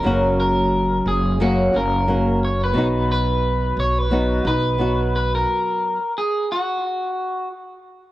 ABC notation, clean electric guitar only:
X:1
M:4/4
L:1/16
Q:"Swing 16ths" 1/4=88
K:Blyd
V:1 name="Clean electric guitar"
A2 A4 G2 F2 A4 c B- | B2 B4 c B3 B4 B A- | A4 G2 F6 z4 |]